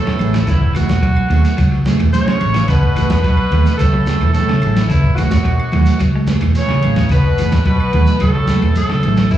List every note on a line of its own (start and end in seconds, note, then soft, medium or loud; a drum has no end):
0.00 0.43 A2 medium
0.00 0.10 G#4 medium
0.00 0.44 A4 loud
0.00 0.45 A4 medium
0.06 muted fingered electric bass stroke soft
0.06 muted clean electric guitar stroke medium
0.06 snare medium
0.06 high conga medium
0.19 0.44 A1 medium
0.19 0.37 A3 medium
0.19 0.37 B3 medium
0.19 0.37 E4 medium
0.19 0.37 G#4 medium
0.19 ride bell medium
0.19 low conga medium
0.19 claves medium
0.19 shekere soft
0.34 0.41 E3 medium
0.34 snare medium
0.34 ride bell medium
0.34 high conga medium
0.34 shekere medium
0.47 0.84 F#1 loud
0.47 0.73 E2 medium
0.47 0.62 C#3 medium
0.47 0.74 E4 loud
0.47 0.74 E4 medium
0.47 kick loud
0.47 ride bell medium
0.47 shekere medium
0.62 kick medium
0.75 1.82 F#2 medium
0.75 0.89 E3 medium
0.75 0.92 A3 medium
0.75 0.92 B3 medium
0.75 0.93 E4 medium
0.75 1.82 F#4 medium
0.75 1.83 F#4 medium
0.75 0.93 G#4 medium
0.75 ride bell medium
0.75 claves medium
0.75 shekere medium
0.89 1.14 E1 loud
0.89 kick medium
0.89 snare medium
0.89 high conga loud
0.89 shekere medium
1.03 1.17 F#3 medium
1.03 kick medium
1.03 ride bell soft
1.03 high conga medium
1.03 shekere soft
1.17 claves medium
1.29 1.42 D#2 medium
1.29 1.47 A3 medium
1.29 1.47 B3 medium
1.29 1.48 E4 medium
1.29 1.48 G#4 medium
1.29 muted clean electric guitar stroke medium
1.29 snare soft
1.29 ride bell medium
1.29 high conga medium
1.29 low conga medium
1.29 shekere soft
1.45 snare soft
1.45 ride bell medium
1.45 shekere medium
1.58 1.95 C#2 loud
1.58 1.65 F#3 medium
1.58 kick medium
1.58 ride bell medium
1.58 claves medium
1.58 shekere medium
1.72 1.86 F#3 medium
1.72 snare soft
1.85 2.02 A3 medium
1.85 2.03 B3 medium
1.85 2.03 E4 medium
1.85 2.03 G#4 medium
1.85 snare medium
1.85 ride bell medium
1.85 high conga medium
1.85 shekere medium
1.99 2.11 E1 medium
1.99 2.14 E3 medium
1.99 ride bell medium
1.99 claves medium
1.99 shekere soft
2.13 2.65 C#3 loud
2.13 2.30 A3 medium
2.13 2.31 B3 medium
2.13 2.31 E4 medium
2.13 2.31 G#4 medium
2.13 2.69 C#5 loud
2.13 2.70 C#5 loud
2.13 ride bell medium
2.13 high conga medium
2.13 low conga medium
2.13 shekere loud
2.27 muted fingered electric bass stroke soft
2.27 muted clean electric guitar stroke medium
2.27 snare medium
2.41 2.66 A1 medium
2.41 2.58 A3 medium
2.41 muted clean electric guitar stroke medium
2.41 ride bell medium
2.41 low conga medium
2.41 claves medium
2.41 shekere soft
2.54 2.62 E3 medium
2.54 snare medium
2.54 ride bell medium
2.54 high conga medium
2.54 shekere medium
2.66 3.05 F#1 medium
2.66 3.21 B2 loud
2.66 2.83 C#3 medium
2.66 3.22 B4 loud
2.66 3.23 B4 loud
2.66 kick medium
2.66 ride bell medium
2.66 shekere medium
2.83 kick medium
2.96 3.11 E3 medium
2.96 3.11 A3 medium
2.96 3.11 B3 medium
2.96 3.10 E4 medium
2.96 3.09 G#4 medium
2.96 ride bell medium
2.96 claves medium
2.96 shekere medium
3.10 3.35 E1 medium
3.10 3.28 B3 soft
3.10 3.27 E4 soft
3.10 3.27 G#4 soft
3.10 kick medium
3.10 snare medium
3.10 ride bell medium
3.10 high conga loud
3.10 shekere medium
3.22 3.74 B2 loud
3.22 3.39 F#3 medium
3.22 3.75 B4 loud
3.22 3.75 B4 medium
3.22 kick medium
3.22 snare soft
3.22 ride bell soft
3.22 shekere soft
3.37 claves medium
3.52 3.64 D#2 loud
3.52 3.66 E3 medium
3.52 3.69 A3 medium
3.52 3.69 B3 medium
3.52 3.69 E4 medium
3.52 3.69 G#4 medium
3.52 ride bell medium
3.52 high conga medium
3.52 low conga medium
3.52 shekere soft
3.66 snare soft
3.66 shekere medium
3.77 4.16 C#2 loud
3.77 4.30 A2 medium
3.77 3.87 F#3 medium
3.77 4.30 A4 loud
3.77 4.30 A4 medium
3.77 kick medium
3.77 ride bell medium
3.77 claves medium
3.77 shekere medium
3.92 4.08 F#3 medium
3.92 high conga medium
4.06 4.24 A3 medium
4.06 4.24 B3 medium
4.06 4.24 E4 medium
4.06 4.24 G#4 medium
4.06 snare medium
4.06 ride bell medium
4.06 high conga medium
4.06 shekere medium
4.21 4.33 E1 medium
4.21 4.36 E3 medium
4.21 claves medium
4.21 shekere soft
4.32 4.85 A2 medium
4.32 4.52 A3 medium
4.32 4.52 B3 medium
4.32 4.52 E4 medium
4.32 4.52 G#4 medium
4.32 4.85 A4 loud
4.32 4.85 A4 medium
4.32 snare soft
4.32 ride bell medium
4.32 high conga medium
4.32 low conga medium
4.32 shekere medium
4.48 4.64 C#3 medium
4.48 muted fingered electric bass stroke soft
4.48 snare medium
4.48 high conga medium
4.62 4.87 A1 medium
4.62 4.79 A3 medium
4.62 4.79 E4 medium
4.62 4.80 G#4 medium
4.62 ride bell soft
4.62 low conga medium
4.62 claves medium
4.62 shekere soft
4.77 4.84 E3 medium
4.77 snare medium
4.77 ride bell soft
4.77 high conga medium
4.77 shekere medium
4.88 5.27 F#1 medium
4.88 5.15 E2 medium
4.88 5.04 C#3 medium
4.88 5.17 E4 loud
4.88 5.19 E4 medium
4.88 kick medium
4.88 ride bell medium
4.88 shekere medium
5.04 kick medium
5.16 6.27 F#2 medium
5.16 5.32 E3 medium
5.16 5.34 A3 medium
5.16 5.35 B3 medium
5.16 6.27 F#4 medium
5.16 6.28 F#4 medium
5.16 5.35 G#4 medium
5.16 snare soft
5.16 ride bell medium
5.16 claves medium
5.16 shekere medium
5.31 5.56 E1 medium
5.31 kick medium
5.31 snare medium
5.31 high conga loud
5.31 shekere medium
5.44 muted clean electric guitar stroke medium
5.44 ride bell soft
5.44 high conga medium
5.44 shekere soft
5.60 claves medium
5.72 5.86 D#2 medium
5.72 5.87 E3 medium
5.72 5.90 A3 medium
5.72 5.90 B3 medium
5.72 5.90 E4 medium
5.72 5.90 G#4 medium
5.72 snare soft
5.72 ride bell medium
5.72 high conga medium
5.72 low conga medium
5.72 shekere soft
5.86 snare soft
5.86 ride bell soft
5.86 shekere medium
6.00 6.37 C#2 loud
6.00 6.08 F#3 medium
6.00 kick medium
6.00 ride bell medium
6.00 claves medium
6.00 shekere medium
6.16 6.29 G#3 medium
6.27 6.45 A3 medium
6.27 6.45 B3 medium
6.27 6.45 G#4 medium
6.27 snare medium
6.27 ride bell medium
6.27 high conga medium
6.27 shekere medium
6.41 6.54 E1 medium
6.41 6.57 E3 medium
6.41 snare soft
6.41 ride bell medium
6.41 claves medium
6.41 shekere soft
6.55 7.07 C#3 medium
6.55 6.72 A3 medium
6.55 6.72 B3 medium
6.55 6.73 E4 medium
6.55 6.73 G#4 medium
6.55 7.08 C#5 medium
6.55 7.08 C#5 loud
6.55 ride bell medium
6.55 high conga medium
6.55 shekere medium
6.69 6.85 C#3 medium
6.69 muted fingered electric bass stroke soft
6.69 snare medium
6.82 7.08 A1 medium
6.82 7.00 A3 medium
6.82 7.00 B3 medium
6.82 7.00 E4 medium
6.82 7.00 G#4 medium
6.82 ride bell medium
6.82 low conga medium
6.82 claves medium
6.82 shekere soft
6.96 7.05 E3 medium
6.96 kick medium
6.96 snare medium
6.96 ride bell medium
6.96 shekere medium
7.09 7.47 F#1 medium
7.09 7.62 B2 medium
7.09 7.26 C#3 medium
7.09 7.63 B4 loud
7.09 kick loud
7.09 ride bell medium
7.09 shekere medium
7.13 7.64 B4 medium
7.24 kick medium
7.38 7.53 E3 medium
7.38 7.55 A3 soft
7.38 7.55 B3 medium
7.38 7.56 G#4 medium
7.38 muted clean electric guitar stroke medium
7.38 ride bell medium
7.38 claves medium
7.38 shekere medium
7.52 7.77 E1 medium
7.52 kick medium
7.52 snare medium
7.52 ride bell medium
7.52 high conga loud
7.52 shekere medium
7.65 8.17 B2 medium
7.65 7.81 F#3 medium
7.65 8.18 B4 loud
7.65 kick medium
7.65 ride bell medium
7.65 shekere soft
7.69 8.19 B4 medium
7.80 claves medium
7.93 8.06 D#2 loud
7.93 8.08 E3 medium
7.93 8.10 A3 medium
7.93 8.10 B3 medium
7.93 8.10 E4 medium
7.93 8.11 G#4 medium
7.93 ride bell medium
7.93 high conga medium
7.93 low conga medium
7.93 shekere soft
8.06 shekere medium
8.19 8.58 C#2 loud
8.19 8.71 A2 medium
8.19 8.29 F#3 medium
8.19 8.72 A4 loud
8.19 kick medium
8.19 ride bell medium
8.19 claves medium
8.19 shekere medium
8.23 8.74 A4 medium
8.36 8.50 F#3 medium
8.47 8.65 A3 medium
8.47 8.66 B3 medium
8.47 8.66 E4 medium
8.47 8.66 G#4 medium
8.47 snare medium
8.47 ride bell medium
8.47 high conga medium
8.47 shekere medium
8.62 8.74 E1 medium
8.62 8.77 E3 medium
8.62 claves medium
8.62 shekere soft
8.75 9.27 A2 medium
8.75 9.28 A4 medium
8.75 9.28 A4 loud
8.75 ride bell medium
8.75 high conga medium
8.75 low conga medium
8.75 shekere loud
8.90 9.05 C#3 medium
8.90 muted fingered electric bass stroke soft
8.90 snare medium
8.90 high conga medium
9.03 9.28 A1 medium
9.03 9.20 A3 medium
9.03 9.21 B3 medium
9.03 9.21 E4 medium
9.03 9.21 G#4 medium
9.03 snare soft
9.03 ride bell soft
9.03 low conga medium
9.03 claves medium
9.03 shekere soft
9.17 9.25 E3 medium
9.17 snare medium
9.17 ride bell soft
9.17 high conga medium
9.17 shekere medium
9.31 9.38 F#1 medium
9.31 9.38 E2 medium
9.31 9.38 E4 loud
9.31 9.38 E4 medium
9.31 muted clean electric guitar stroke medium
9.31 kick loud
9.31 ride bell soft
9.31 shekere medium